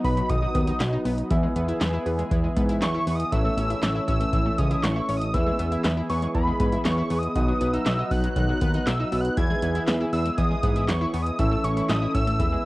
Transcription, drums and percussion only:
0.04 kick medium
0.04 open hi-hat medium
0.17 closed hi-hat medium
0.29 kick loud
0.29 closed hi-hat medium
0.55 kick medium
0.55 closed hi-hat medium
0.67 closed hi-hat medium
0.80 snare loud
0.80 clap loud
0.80 closed hi-hat medium
1.05 open hi-hat medium
1.18 closed hi-hat medium
1.31 kick loud
1.31 closed hi-hat medium
1.56 closed hi-hat medium
1.69 closed hi-hat medium
1.81 snare loud
1.81 clap medium
1.81 closed hi-hat medium
2.06 open hi-hat medium
2.19 closed hi-hat medium
2.31 kick loud
2.31 closed hi-hat medium
2.57 kick medium
2.57 closed hi-hat medium
2.69 closed hi-hat medium
2.82 snare loud
2.82 clap medium
2.82 closed hi-hat medium
3.07 open hi-hat medium
3.20 closed hi-hat medium
3.32 kick loud
3.32 closed hi-hat medium
3.58 closed hi-hat medium
3.70 closed hi-hat medium
3.83 snare loud
3.83 clap loud
3.83 closed hi-hat medium
4.08 kick medium
4.08 closed hi-hat medium
4.21 closed hi-hat medium
4.33 kick loud
4.33 closed hi-hat medium
4.58 kick medium
4.58 closed hi-hat medium
4.71 closed hi-hat medium
4.84 snare loud
4.84 clap loud
4.84 closed hi-hat medium
5.09 open hi-hat medium
5.21 closed hi-hat medium
5.34 kick loud
5.34 closed hi-hat medium
5.59 closed hi-hat medium
5.72 closed hi-hat medium
5.84 snare loud
5.84 clap medium
5.84 closed hi-hat medium
6.10 open hi-hat medium
6.22 closed hi-hat medium
6.34 kick loud
6.34 closed hi-hat medium
6.60 kick medium
6.60 closed hi-hat medium
6.72 closed hi-hat medium
6.85 snare loud
6.85 clap loud
6.85 closed hi-hat medium
7.10 open hi-hat medium
7.23 closed hi-hat medium
7.36 kick loud
7.36 closed hi-hat medium
7.61 closed hi-hat medium
7.74 closed hi-hat medium
7.86 snare loud
7.86 clap loud
7.86 closed hi-hat medium
8.11 kick medium
8.11 open hi-hat medium
8.24 closed hi-hat medium
8.36 kick loud
8.36 closed hi-hat medium
8.61 kick medium
8.61 closed hi-hat medium
8.74 closed hi-hat medium
8.87 snare loud
8.87 clap loud
8.87 closed hi-hat medium
9.12 open hi-hat medium
9.25 closed hi-hat medium
9.37 kick loud
9.37 closed hi-hat medium
9.62 closed hi-hat medium
9.75 closed hi-hat medium
9.88 snare loud
9.88 clap loud
9.88 closed hi-hat medium
10.13 open hi-hat medium
10.26 closed hi-hat medium
10.38 kick loud
10.38 closed hi-hat medium
10.63 kick loud
10.63 closed hi-hat medium
10.76 closed hi-hat medium
10.89 snare loud
10.89 clap loud
10.89 closed hi-hat medium
11.14 open hi-hat medium
11.26 closed hi-hat medium
11.39 kick loud
11.39 closed hi-hat medium
11.64 closed hi-hat medium
11.77 closed hi-hat medium
11.89 snare loud
11.89 clap medium
11.89 closed hi-hat medium
12.14 kick medium
12.14 closed hi-hat medium
12.27 closed hi-hat medium
12.40 kick loud
12.40 closed hi-hat medium

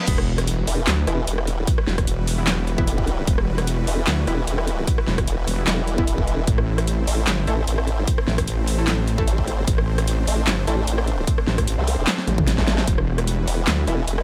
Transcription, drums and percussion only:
0.07 kick loud
0.07 closed hi-hat medium
0.07 crash loud
0.18 cross-stick medium
0.38 cross-stick medium
0.38 closed hi-hat medium
0.47 closed hi-hat medium
0.67 open hi-hat medium
0.87 snare loud
0.87 clap medium
0.87 closed hi-hat medium
1.07 cross-stick medium
1.07 closed hi-hat medium
1.27 closed hi-hat medium
1.38 cross-stick medium
1.47 closed hi-hat medium
1.67 kick loud
1.67 closed hi-hat medium
1.78 cross-stick medium
1.87 snare medium
1.98 kick medium
1.98 cross-stick medium
1.98 closed hi-hat medium
2.07 closed hi-hat medium
2.27 open hi-hat medium
2.47 snare loud
2.47 clap medium
2.47 closed hi-hat medium
2.67 closed hi-hat medium
2.78 kick loud
2.87 closed hi-hat medium
2.98 kick medium
3.07 closed hi-hat medium
3.27 kick loud
3.27 closed hi-hat medium
3.38 cross-stick medium
3.58 cross-stick medium
3.58 closed hi-hat medium
3.67 closed hi-hat medium
3.87 open hi-hat medium
4.07 snare loud
4.07 clap medium
4.07 closed hi-hat medium
4.27 cross-stick medium
4.27 closed hi-hat soft
4.47 closed hi-hat medium
4.58 cross-stick medium
4.67 closed hi-hat medium
4.87 kick loud
4.87 closed hi-hat medium
4.98 cross-stick medium
5.07 snare medium
5.18 kick medium
5.18 cross-stick medium
5.18 closed hi-hat medium
5.27 closed hi-hat medium
5.47 open hi-hat medium
5.67 snare loud
5.67 clap medium
5.67 closed hi-hat medium
5.87 closed hi-hat soft
5.98 kick loud
6.07 closed hi-hat medium
6.18 kick medium
6.27 closed hi-hat medium
6.47 kick loud
6.47 closed hi-hat medium
6.58 cross-stick medium
6.78 cross-stick medium
6.78 closed hi-hat medium
6.87 closed hi-hat medium
7.07 open hi-hat medium
7.27 snare loud
7.27 clap medium
7.27 closed hi-hat medium
7.47 cross-stick medium
7.47 closed hi-hat medium
7.67 closed hi-hat medium
7.78 cross-stick medium
7.87 closed hi-hat medium
8.07 kick loud
8.07 closed hi-hat medium
8.18 cross-stick medium
8.28 snare medium
8.38 kick medium
8.38 cross-stick medium
8.38 closed hi-hat medium
8.47 closed hi-hat medium
8.67 open hi-hat loud
8.88 snare loud
8.88 clap medium
8.88 closed hi-hat medium
9.08 closed hi-hat medium
9.18 kick loud
9.28 closed hi-hat medium
9.38 kick medium
9.48 closed hi-hat medium
9.67 kick loud
9.67 closed hi-hat medium
9.78 cross-stick medium
9.98 cross-stick medium
9.98 closed hi-hat medium
10.08 closed hi-hat medium
10.27 open hi-hat loud
10.47 snare loud
10.47 clap medium
10.47 closed hi-hat medium
10.67 cross-stick medium
10.67 closed hi-hat medium
10.87 closed hi-hat medium
10.98 cross-stick medium
11.07 closed hi-hat medium
11.27 kick loud
11.27 closed hi-hat medium
11.38 cross-stick medium
11.47 snare medium
11.58 kick medium
11.58 cross-stick medium
11.58 closed hi-hat medium
11.67 closed hi-hat medium
11.87 open hi-hat loud
12.07 snare loud
12.07 clap medium
12.07 closed hi-hat medium
12.07 high tom medium
12.18 snare medium
12.27 closed hi-hat medium
12.27 high tom medium
12.38 kick loud
12.38 mid tom medium
12.47 snare medium
12.47 closed hi-hat medium
12.58 kick medium
12.58 snare medium
12.68 snare loud
12.68 closed hi-hat medium
12.78 snare medium
12.87 kick loud
12.87 closed hi-hat medium
12.98 cross-stick medium
13.18 cross-stick medium
13.18 closed hi-hat medium
13.27 closed hi-hat medium
13.47 open hi-hat medium
13.67 snare loud
13.67 clap medium
13.67 closed hi-hat medium
13.87 cross-stick medium
13.87 closed hi-hat medium
14.07 closed hi-hat medium
14.18 cross-stick medium

